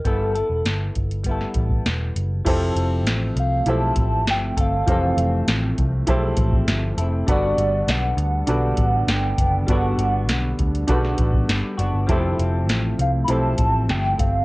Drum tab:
CC |----------------|x---------------|----------------|----------------|
HH |x-x-x-xxx-x-x-x-|x-x-x-x-x-x-x-x-|x-x-x-x-x-x-x-x-|x-x-x-x-x-x-x-x-|
SD |----o----o--o---|----o-------o---|----o-------o---|----o-------o---|
BD |o-----o-o-oo----|o---------o---o-|o-----o-o-oo----|o---------o---o-|

CC |----------------|----------------|
HH |x-x-x-xxx-x-x-x-|x-x-x-x-x-x-x-x-|
SD |----o----o--o---|----o-------o---|
BD |o-----o-o-oo----|o---------o---o-|